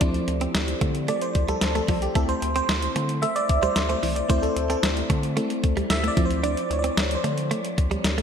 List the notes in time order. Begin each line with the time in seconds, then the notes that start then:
Already playing: G4 A4 C5 D5
0.01 D2 F3 C4 D4 E4, kick, closed hi-hat
0.14 closed hi-hat
0.28 D2, muted clean electric guitar stroke, closed hi-hat
0.41 C4, closed hi-hat
0.55 D2, snare, closed hi-hat
0.68 closed hi-hat
0.81 D3 A3, kick, closed hi-hat
0.95 closed hi-hat
1.08 A3 D5, closed hi-hat
1.22 C5, closed hi-hat
1.35 D2, muted clean electric guitar stroke, kick, closed hi-hat
1.48 G3 A4, closed hi-hat
1.61 D2, muted clean electric guitar stroke, snare, closed hi-hat
1.75 A3 A4, closed hi-hat
1.88 C2 F3, kick, open hi-hat
2.02 G4, closed hi-hat
2.15 D2 A3 C4 E4 A4, kick, closed hi-hat
2.29 C5, closed hi-hat
2.42 D2, muted clean electric guitar stroke, closed hi-hat
2.56 C4 C5, closed hi-hat
2.69 D2, snare, closed hi-hat
2.82 closed hi-hat
2.95 D3 A3 C4 E4, closed hi-hat
3.09 closed hi-hat
3.22 A3 E5, closed hi-hat
3.36 D5, closed hi-hat
3.49 D2, muted clean electric guitar stroke, kick, closed hi-hat
3.62 G3 C5, closed hi-hat
3.76 D2, muted clean electric guitar stroke, snare, closed hi-hat
3.89 A3 C5, closed hi-hat
4.03 C2 E3, open hi-hat
4.16 D5, closed hi-hat
4.29 D2 A3 C4 E4 C5, kick, closed hi-hat
4.42 A4, closed hi-hat
4.56 D2, muted clean electric guitar stroke, closed hi-hat
4.70 C4 A4, closed hi-hat
4.83 D2, snare, closed hi-hat
4.97 closed hi-hat
5.10 D3 A3, kick, closed hi-hat
5.23 closed hi-hat
5.36 A3 C4 E4, closed hi-hat
5.50 closed hi-hat
5.64 D2, muted clean electric guitar stroke, kick, closed hi-hat
5.77 G3, closed hi-hat
5.90 D2 E5, muted clean electric guitar stroke, snare, closed hi-hat
6.04 A3, closed hi-hat
6.08 D5
6.17 D2 F3 C4 E4, kick, closed hi-hat
6.26 C5
6.31 closed hi-hat
6.43 D4 D5, closed hi-hat
6.57 closed hi-hat
6.70 D2 C#5, muted clean electric guitar stroke, closed hi-hat
6.79 D5
6.84 C4, closed hi-hat
6.97 D2, snare, closed hi-hat
7.11 C5, closed hi-hat
7.24 D3 A3, closed hi-hat
7.38 closed hi-hat
7.51 A3, closed hi-hat
7.65 closed hi-hat
7.78 D2, muted clean electric guitar stroke, kick, closed hi-hat
7.91 G3, closed hi-hat
8.04 D2, muted clean electric guitar stroke, snare, closed hi-hat
8.18 A3, closed hi-hat